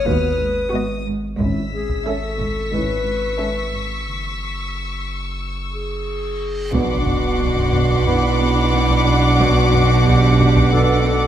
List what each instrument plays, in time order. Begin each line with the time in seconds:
Already playing: sub bass G#1, violin section D#6 F6
0.06 double bass section D#2, cello section D#2 G#2, french horn section B3 F#4, clarinet B4, taiko
0.40 cello section G#2
0.72 cello section G#2, viola section B3 F#4, violin section D#5
1.06 cello section G#2
1.39 double bass section G#1, sub bass G#1, cello section G#2, french horn section C#4 E4, violin section E6 B6, taiko
1.72 cello section G#3, clarinet G#4
1.89 taiko
2.06 cello section G#2, viola section C#4 A4, clarinet A4, violin section E5 C#6
2.39 cello section G#2, taiko
2.72 double bass section G#1, cello section G#2, french horn section C#4 E4, clarinet B4, taiko
3.06 cello section G#2
3.39 cello section G#2, viola section C#4 A4, violin section E5
3.72 cello section G#2
4.07 sub bass F#1, reverse cymbal
5.73 clarinet G#4
6.73 double bass section B1, sub bass B1, cello section B2, trombone section B2 B3, french horn section D4 F#4, viola section D4, clarinet F#4, violin section F#5 B5 C6 D6, taiko, sub drop
7.07 cello section B3, taiko low
7.40 cello section B2, taiko
7.57 taiko low
7.73 cello section B2, taiko low
7.90 taiko
8.06 cello section B2, trombone section B2 B3, french horn section D4 F#4, clarinet E4, taiko low
8.39 cello section B3
8.73 cello section B2
8.90 taiko
9.07 cello section B2
9.39 cello section B2, trombone section B2 B3, french horn section D4 F#4, clarinet F#4, taiko
9.72 cello section B3, taiko low
10.06 cello section B2, clarinet G4, taiko
10.23 taiko low
10.39 cello section B2, taiko low
10.56 taiko
10.73 cello section B2, trombone section B2 B3, french horn section D4 F#4, clarinet A4, taiko low
11.06 cello section B3, clarinet A4